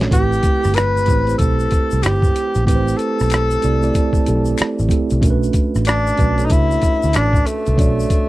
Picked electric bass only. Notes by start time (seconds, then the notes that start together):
0.12 A1
0.65 G1
1.09 A1
1.40 B1
1.93 C2
2.05 G1
2.56 A#1
2.68 A1
3.21 B1
3.64 C2
4.28 B1
4.61 muted picked electric bass stroke
4.80 A1
5.12 C2
5.23 B1
5.76 A1
6.20 B1
6.51 C#2
7.04 D2
7.16 A1
7.68 C2
7.79 B1